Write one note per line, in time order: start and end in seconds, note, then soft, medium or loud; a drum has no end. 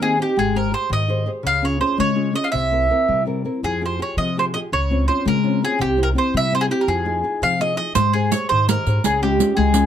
0.00 0.17 D#3 medium
0.00 0.17 A#3 medium
0.00 0.17 C4 soft
0.00 0.18 D#4 soft
0.00 0.18 G4 medium
0.00 0.18 G#4 medium
0.18 0.32 C4 soft
0.18 0.33 D#4 soft
0.18 0.33 G4 soft
0.18 0.36 G4 medium
0.37 0.72 G#1 medium
0.37 0.71 G#3 medium
0.37 0.56 G#4 medium
0.55 0.71 G4 soft
0.55 0.71 G#4 soft
0.55 0.73 A#4 medium
0.55 0.71 C5 medium
0.72 1.01 G4 soft
0.72 1.01 G#4 soft
0.72 1.01 C5 soft
0.72 0.89 C5 medium
0.90 1.26 G#2 medium
0.90 1.25 D#3 medium
0.90 1.29 D#5 medium
1.08 1.25 G4 soft
1.08 1.26 G#4 soft
1.08 1.26 C5 medium
1.26 1.40 G4 soft
1.26 1.41 G#4 soft
1.26 1.41 C5 soft
1.43 1.80 C#2 medium
1.43 1.79 C#3 medium
1.43 1.64 F5 medium
1.62 1.79 C#4 soft
1.62 1.80 F4 soft
1.62 1.80 G#4 soft
1.62 1.80 C#5 medium
1.80 2.10 C#4 soft
1.80 2.10 F4 soft
1.80 2.10 G#4 soft
1.80 1.97 C5 medium
1.98 2.35 C#3 medium
1.98 2.33 G#3 medium
1.98 2.35 C#5 medium
2.15 2.32 C#4 soft
2.15 2.33 F4 soft
2.15 2.33 G#4 medium
2.33 2.48 C#4 soft
2.33 2.49 F4 soft
2.33 2.49 G#4 soft
2.33 2.46 D#5 medium
2.44 2.51 F5 medium
2.52 2.89 C2 medium
2.52 2.88 C3 medium
2.52 3.22 E5 medium
2.72 2.89 C4 soft
2.72 2.90 E4 soft
2.72 2.89 A#4 soft
2.90 3.19 C4 soft
2.90 3.20 E4 soft
2.90 3.20 A#4 soft
3.08 3.44 C3 medium
3.08 3.44 G3 medium
3.26 3.43 C4 soft
3.26 3.44 E4 soft
3.26 3.44 A#4 soft
3.45 3.59 C4 soft
3.45 3.60 E4 soft
3.45 3.60 A#4 soft
3.63 3.99 F2 medium
3.63 3.99 F3 medium
3.63 3.81 G#4 medium
3.81 3.98 F4 soft
3.81 3.98 G4 soft
3.81 3.99 G#4 soft
3.86 4.00 C5 medium
3.99 4.28 F4 soft
3.99 4.29 G4 soft
3.99 4.29 G#4 soft
3.99 4.17 C#5 medium
4.17 4.53 C3 medium
4.17 4.53 F3 medium
4.17 4.37 D#5 medium
4.37 4.53 F4 soft
4.37 4.53 G4 soft
4.37 4.54 G#4 soft
4.37 4.44 C5 medium
4.54 4.69 F4 soft
4.54 4.69 G4 soft
4.54 4.69 G#4 soft
4.54 4.59 D#5 medium
4.72 5.07 C#2 medium
4.72 5.08 C#3 medium
4.72 5.07 C#5 medium
4.90 5.07 C4 soft
4.90 5.07 C#4 soft
4.90 5.07 F4 soft
5.08 5.37 C4 soft
5.08 5.37 C#4 soft
5.08 5.37 F4 soft
5.08 5.26 C5 medium
5.25 5.61 C#3 medium
5.25 5.61 G#3 medium
5.25 5.61 A#4 medium
5.43 5.61 C4 soft
5.43 5.61 C#4 soft
5.43 5.62 F4 medium
5.62 5.76 C4 soft
5.62 5.77 C#4 soft
5.62 5.77 F4 soft
5.62 5.80 G#4 medium
5.79 6.15 C2 medium
5.79 6.14 C3 medium
5.79 6.00 G4 medium
5.97 6.14 C4 soft
5.97 6.14 E4 soft
5.97 6.15 G4 soft
6.03 6.08 A#4 medium
6.15 6.44 C4 soft
6.15 6.44 E4 soft
6.15 6.45 G4 soft
6.15 6.34 C5 medium
6.34 6.69 C3 medium
6.34 6.69 G3 medium
6.34 6.53 E5 medium
6.52 6.69 C4 soft
6.52 6.69 E4 soft
6.52 6.70 G4 medium
6.52 6.62 C5 medium
6.61 6.65 G#4 medium
6.70 6.84 C4 soft
6.70 6.84 E4 soft
6.70 6.84 G4 soft
6.70 6.80 G4 medium
6.81 6.88 A#4 medium
6.87 7.22 F2 medium
6.87 7.23 F3 medium
6.87 7.56 G#4 medium
7.05 7.22 D#4 soft
7.05 7.23 F4 soft
7.05 7.23 G#4 soft
7.23 7.52 D#4 soft
7.23 7.53 F4 soft
7.23 7.53 G#4 soft
7.42 7.77 C3 medium
7.42 7.77 F3 medium
7.42 7.59 F5 medium
7.60 7.75 D#4 soft
7.60 7.76 F4 soft
7.60 7.76 G#4 soft
7.60 7.76 D#5 medium
7.76 7.91 D#4 soft
7.76 7.91 F4 soft
7.76 7.91 G#4 soft
7.76 7.94 D#5 medium
7.95 8.31 G#2 medium
7.95 8.31 G#3 medium
7.95 8.12 C5 medium
7.95 riq medium
8.13 8.31 G4 soft
8.13 8.30 G#4 medium
8.13 8.32 G#4 soft
8.13 8.32 C5 soft
8.32 8.61 G4 soft
8.32 8.61 G#4 soft
8.32 8.62 C5 soft
8.32 8.48 C#5 medium
8.32 riq medium
8.49 8.74 G#2 medium
8.49 8.85 D#3 medium
8.49 8.68 C5 medium
8.69 8.86 G4 soft
8.69 8.85 G#4 soft
8.69 9.04 A#4 medium
8.69 8.86 C5 soft
8.69 riq medium
8.87 8.97 G#2 medium
8.87 9.00 G4 soft
8.87 9.00 G#4 soft
8.87 9.00 C5 soft
8.87 riq soft
9.04 9.39 C#2 medium
9.04 9.38 C#3 medium
9.04 9.22 G#4 medium
9.04 riq medium
9.22 9.50 G#3 soft
9.22 9.38 C#4 soft
9.22 9.38 F4 soft
9.22 9.54 G4 medium
9.39 9.67 C#4 soft
9.39 9.67 F4 soft
9.39 9.68 G#4 soft
9.39 riq medium
9.57 9.86 C#2 loud
9.57 9.86 G#3 medium
9.57 9.86 G#4 medium
9.74 9.86 C#4 soft
9.74 9.86 F4 soft
9.74 9.86 G#4 soft
9.74 riq medium